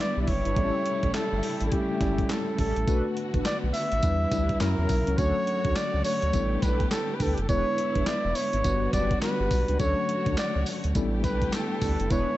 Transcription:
Already playing: string section D3 G3 B3 E4, tine electric piano G3 D4 E4 B4
0.00 muted trumpet D5, clap
0.16 analog synth bass B1, analog polysynth D4 E4 G4 B4
0.22 muted trumpet D5
0.28 analog synth bass F#1, muted trumpet C#5, kick, open hi-hat
0.45 analog synth bass G1, analog polysynth D4 E4 G4 B4, closed hi-hat
0.56 analog synth bass A1, string section C#3 A3, tine electric piano G3 B3 E4 A4, analog polysynth C#4 E4 G4 A4, kick, closed hi-hat
0.63 tine electric piano C#4
0.86 closed hi-hat
1.03 analog synth bass A1, analog polysynth C#4 E4 G4 A4, kick, closed hi-hat
1.14 muted trumpet A4, snare, clap, closed hi-hat
1.33 analog synth bass G1
1.43 open hi-hat
1.61 analog synth bass A1, closed hi-hat
1.67 muted trumpet A4
1.72 tine electric piano G3 C#4 E4 A4, muted trumpet G4, kick, closed hi-hat
2.00 analog synth bass G1, tine electric piano G3 C#4 E4 A4, analog polysynth C#4 E4 G4 A4, kick, snare, closed hi-hat
2.18 kick, closed hi-hat
2.30 muted trumpet A4, snare, clap, closed hi-hat
2.58 analog synth bass A1, analog polysynth C#4 E4 G4 A4, muted trumpet A4, kick, open hi-hat
2.76 analog synth bass A1, closed hi-hat
2.87 analog synth bass B1, string section D3 B3 F#4, tine electric piano A3 D4 F#4 B4, analog polysynth D4 F#4 A4 B4, kick, closed hi-hat, tambourine
3.17 closed hi-hat
3.34 analog synth bass A1, analog polysynth D4 F#4 A4 B4, kick, closed hi-hat
3.45 muted trumpet D5, snare, clap, closed hi-hat, tambourine
3.64 analog synth bass B1
3.74 muted trumpet E5, open hi-hat, tambourine
3.92 analog synth bass A1, closed hi-hat
4.03 analog synth bass E2, tine electric piano G3 D4 E4 B4, string section G3 E4, kick, closed hi-hat, tambourine
4.31 analog synth bass D2, tine electric piano G3 D4 E4 B4, analog polysynth D4 E4 G4 B4, kick, snare, closed hi-hat, tambourine
4.49 kick, closed hi-hat
4.60 analog synth bass F#2, string section C#3 F#3 A#3, tine electric piano F#3 C#4 E4 A#4, muted trumpet A#4, snare, clap, closed hi-hat, tambourine
4.78 analog synth bass E2, analog polysynth C#4 E4 F#4 A#4
4.89 analog synth bass B1, kick, open hi-hat, tambourine
5.07 analog synth bass C#2, analog polysynth C#4 E4 F#4 A#4, closed hi-hat
5.18 analog synth bass D2, string section D3 A3 F#4 C#5, tine electric piano F#3 A3 C#4 D4 A4, analog polysynth D4 F#4 A4 C#5, muted trumpet C#5, kick, closed hi-hat, tambourine
5.47 closed hi-hat
5.64 analog synth bass D2, analog polysynth D4 F#4 A4 C#5, kick, closed hi-hat
5.76 muted trumpet D5, snare, clap, closed hi-hat, tambourine
5.94 analog synth bass C#2
6.04 muted trumpet C#5, open hi-hat, tambourine
6.22 analog synth bass D2, closed hi-hat
6.33 analog synth bass A1, tine electric piano G3 B3 D4 E4 A4, string section B3 G4, kick, closed hi-hat, tambourine
6.62 analog synth bass B1, analog polysynth D4 G4 A4 B4, muted trumpet B4, kick, snare, closed hi-hat, tambourine
6.80 kick, closed hi-hat
6.91 muted trumpet A4, snare, clap, closed hi-hat, tambourine
7.15 muted trumpet B4
7.20 analog synth bass D2, analog polysynth D4 G4 A4 B4, muted trumpet A4, kick, open hi-hat, tambourine
7.34 analog synth bass F#1, muted trumpet G4, closed hi-hat
7.42 muted trumpet A4
7.49 analog synth bass E1, string section D3 G#3 B3 E4, tine electric piano G#3 B3 D4 E4 B4, analog polysynth D4 E4 G#4 B4, muted trumpet C#5, kick, closed hi-hat, tambourine
7.78 closed hi-hat
7.95 analog synth bass F#1, analog polysynth D4 E4 G#4 B4, kick, closed hi-hat
8.06 muted trumpet D5, snare, clap, closed hi-hat, tambourine
8.25 analog synth bass E1
8.35 muted trumpet C#5, open hi-hat, tambourine
8.53 analog synth bass G#1, closed hi-hat
8.64 analog synth bass G1, tine electric piano G3 B3 D4 F#4 B4, string section G3 F#4, kick, closed hi-hat, tambourine
8.93 analog synth bass F#1, analog polysynth D4 F#4 G4 B4, muted trumpet D5, kick, snare, closed hi-hat, tambourine
9.11 kick, closed hi-hat
9.22 muted trumpet B4, snare, clap, closed hi-hat, tambourine
9.39 analog synth bass G1, analog polysynth D4 F#4 G4 B4
9.51 analog synth bass B1, kick, open hi-hat, tambourine
9.68 analog synth bass C#2, analog polysynth D4 F#4 G4 B4, closed hi-hat
9.79 analog synth bass D2, tine electric piano F#3 A3 C#4 D4 A4, string section A3 F#4 C#5, analog polysynth D4 F#4 A4 C#5, muted trumpet C#5, kick, closed hi-hat, tambourine
10.09 closed hi-hat
10.26 analog synth bass D2, analog polysynth D4 F#4 A4 C#5, kick, closed hi-hat
10.37 muted trumpet D5, snare, clap, closed hi-hat, tambourine
10.56 analog synth bass C#2
10.66 open hi-hat, tambourine
10.84 analog synth bass D2, closed hi-hat
10.95 analog synth bass A1, string section D3 A3 B3 G4, tine electric piano G3 B3 C#4 E4 A4, kick, closed hi-hat, tambourine
11.02 tine electric piano D4
11.23 analog synth bass B1, analog polysynth D4 G4 A4 B4, muted trumpet B4, kick, snare, closed hi-hat, tambourine
11.42 kick, closed hi-hat
11.53 muted trumpet A4, snare, clap, closed hi-hat, tambourine
11.81 analog synth bass D2, analog polysynth D4 G4 A4 B4, kick, open hi-hat, tambourine
12.00 analog synth bass F#1, closed hi-hat
12.10 analog synth bass E1, string section G#3 B3 E4, tine electric piano G#3 B3 D4 E4 B4, analog polysynth D4 E4 G#4 B4, muted trumpet C#5, kick, closed hi-hat, tambourine

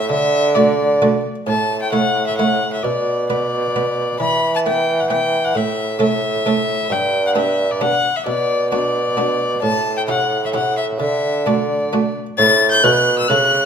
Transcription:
Already playing: bassoon A2
0.09 harpsichord D3, bassoon D3, violin E5
0.55 harpsichord A3 F#4 D5, violin D5
1.02 harpsichord A3 F#4 D5
1.47 harpsichord A2, bassoon A2, violin A5
1.82 violin G5
1.92 harpsichord A3 E4 C#5, violin F#5
2.27 violin E5
2.38 harpsichord A3 E4 C#5, violin F#5
2.73 violin E5
2.83 bassoon B2, harpsichord B2, violin D5
3.30 harpsichord B3 B4, violin D5
3.76 harpsichord B3 B4
4.19 bassoon E3, harpsichord E3, violin B5
4.55 violin A5
4.66 harpsichord B3 B4, violin G5
5.00 violin F#5
5.10 harpsichord B3 B4, violin G5
5.45 violin F#5
5.55 harpsichord A2, bassoon A2, violin E5
5.99 harpsichord A3 C#4 A4, violin E5
6.46 harpsichord A3 C#4 A4
6.90 bassoon G2, harpsichord G2, violin G5
7.27 violin F#5
7.35 harpsichord B3 D4 G4, violin E5
7.71 violin D5
7.81 harpsichord B3 D4 G4, violin F#5
8.16 violin E5
8.26 bassoon B2, harpsichord B2, violin D5
8.71 harpsichord B3 D4 F#4, violin D5
9.17 harpsichord B3 D4 F#4
9.62 bassoon A2, harpsichord A2, violin A5
9.97 violin G5
10.08 harpsichord C#4 E4 G4, violin F#5
10.45 violin E5
10.54 harpsichord C#4 E4 G4, violin F#5
10.77 violin E5
10.99 bassoon D3, harpsichord D3, violin E5
11.46 harpsichord A3 D4 F#4, violin D5
11.93 harpsichord A3 D4 F#4
12.38 bassoon A2, harpsichord A2, violin A6
12.71 violin G6
12.83 bassoon B2, harpsichord B2 C#4 E4 A4, violin F#6
13.19 violin E6
13.28 bassoon C#3, harpsichord C#3 C#4 E4 A4, violin F#6

